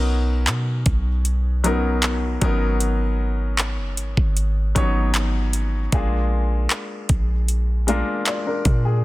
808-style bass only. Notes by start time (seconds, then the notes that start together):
Already playing: B1
0.47 B2
0.86 B1
2.42 G#1
3.78 F#1
3.98 G#1
4.17 G#1
4.76 G#1
5.93 A#1
7.09 A#1
8.65 A#2